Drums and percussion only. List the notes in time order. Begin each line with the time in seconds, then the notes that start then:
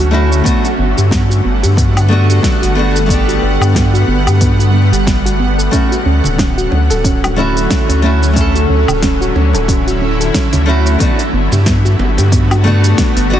0.32 cabasa
0.45 kick, open hi-hat, cabasa
0.65 open hi-hat, cabasa
0.98 cabasa
1.11 kick, snare, open hi-hat, cabasa
1.31 cabasa
1.64 open hi-hat, cabasa
1.77 kick, open hi-hat, cabasa
1.97 open hi-hat, cabasa, low woodblock
2.30 open hi-hat, cabasa
2.43 kick, snare, open hi-hat, cabasa
2.63 open hi-hat, cabasa
2.96 cabasa
3.09 kick, open hi-hat, cabasa
3.29 open hi-hat, cabasa
3.62 cabasa, low woodblock
3.75 kick, snare, open hi-hat, cabasa
3.95 cabasa
4.27 open hi-hat, cabasa, low woodblock
4.41 kick, open hi-hat, cabasa
4.60 open hi-hat, cabasa
4.93 open hi-hat, cabasa
5.07 kick, snare, open hi-hat, cabasa
5.26 open hi-hat, cabasa
5.60 cabasa
5.73 kick, open hi-hat, cabasa
5.92 open hi-hat, cabasa
6.24 high conga, cabasa
6.39 kick, snare, open hi-hat, cabasa
6.58 cabasa
6.72 high bongo
6.90 open hi-hat, high bongo, cabasa
7.04 kick, open hi-hat, cabasa
7.24 open hi-hat, high bongo, cabasa, low woodblock
7.38 high conga
7.57 open hi-hat, cabasa
7.70 kick, snare, open hi-hat, cabasa
7.90 open hi-hat, cabasa
8.23 cabasa
8.36 kick, open hi-hat, cabasa
8.55 open hi-hat, cabasa
8.88 high conga, cabasa, low woodblock
9.02 kick, snare, open hi-hat, cabasa
9.22 cabasa
9.36 high bongo
9.53 open hi-hat, high bongo, cabasa
9.68 kick, open hi-hat, cabasa
9.88 open hi-hat, cabasa
10.21 open hi-hat, cabasa
10.34 kick, snare, open hi-hat, cabasa
10.53 open hi-hat, high conga, cabasa
10.87 cabasa
11.00 kick, open hi-hat, cabasa
11.19 open hi-hat, cabasa
11.52 high conga, cabasa
11.66 kick, snare, open hi-hat, cabasa
11.86 cabasa
11.99 high bongo
12.18 open hi-hat, high bongo, cabasa
12.32 kick, open hi-hat, cabasa
12.51 open hi-hat, high bongo, cabasa, low woodblock
12.67 high conga
12.84 open hi-hat, cabasa
12.98 kick, snare, open hi-hat, cabasa
13.17 open hi-hat, cabasa